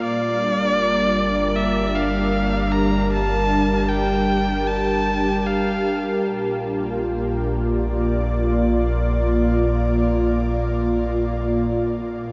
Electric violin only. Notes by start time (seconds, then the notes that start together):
0.04 D5
1.56 E5
1.95 F5
2.72 A#5
3.13 A5
3.88 G5
4.68 A5
5.46 F5